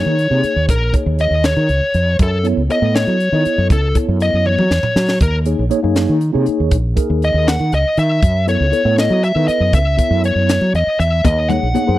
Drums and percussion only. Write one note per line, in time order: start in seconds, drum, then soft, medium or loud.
0.19 closed hi-hat medium
0.43 closed hi-hat medium
0.69 kick loud
0.69 closed hi-hat medium
0.94 kick medium
0.94 closed hi-hat medium
1.19 closed hi-hat medium
1.44 snare medium
1.44 closed hi-hat medium
1.69 closed hi-hat medium
1.94 closed hi-hat medium
2.19 kick loud
2.19 closed hi-hat medium
2.45 closed hi-hat medium
2.70 closed hi-hat medium
2.95 snare medium
2.95 closed hi-hat medium
3.20 closed hi-hat medium
3.45 closed hi-hat medium
3.70 kick loud
3.70 closed hi-hat medium
3.95 kick medium
3.95 closed hi-hat medium
4.20 closed hi-hat medium
4.46 high tom soft
4.58 high tom medium
4.71 snare medium
4.83 mid tom medium
4.96 snare medium
5.09 snare medium
5.20 kick loud
5.20 closed hi-hat medium
5.45 closed hi-hat medium
5.71 closed hi-hat medium
5.96 snare medium
5.96 closed hi-hat medium
6.21 closed hi-hat medium
6.46 closed hi-hat medium
6.71 kick loud
6.71 closed hi-hat medium
6.97 kick medium
6.97 closed hi-hat medium
7.22 closed hi-hat medium
7.48 snare loud
7.48 closed hi-hat medium
7.72 closed hi-hat medium
7.97 closed hi-hat medium
8.22 kick loud
8.22 closed hi-hat medium
8.48 closed hi-hat medium
8.73 closed hi-hat medium
8.98 snare medium
8.98 closed hi-hat medium
9.23 closed hi-hat medium
9.48 closed hi-hat medium
9.73 kick loud
9.73 closed hi-hat medium
9.98 kick medium
9.98 closed hi-hat medium
10.24 closed hi-hat medium
10.49 snare medium
10.49 closed hi-hat medium
10.75 closed hi-hat medium
11.00 closed hi-hat medium
11.25 kick loud
11.25 closed hi-hat medium
11.25 high conga loud
11.25 low conga soft
11.50 closed hi-hat medium
11.50 low conga medium
11.63 low conga soft
11.75 closed hi-hat medium
11.75 high conga medium